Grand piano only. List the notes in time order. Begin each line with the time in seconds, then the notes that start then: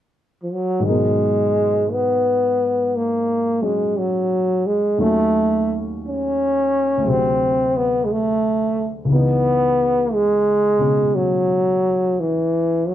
0.80 G#2 D#3
0.85 F#3 A#4
0.90 B2
3.61 F#3 G#3 C#4
4.98 D#2 D#3 F#3 A3 C#4
6.97 D2 D3
7.04 F#3 G#4
7.08 C3
9.05 C#2 C#3
9.09 E3 B3
9.15 D#4
10.78 B2 C#3 G#3 C#4